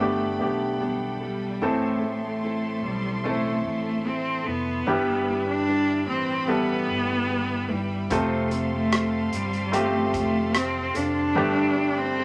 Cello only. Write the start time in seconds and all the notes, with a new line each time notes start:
Already playing: A3
1.23 G3
1.64 A3
2.25 A3
2.83 G3
3.26 A3
3.66 A3
4.07 C4
4.47 B3
5.48 D4
6.09 C4
6.49 B3
7.71 G3
8.12 A3
8.73 A3
9.35 G3
9.76 A3
10.16 A3
10.55 C4
10.96 D4
11.97 C4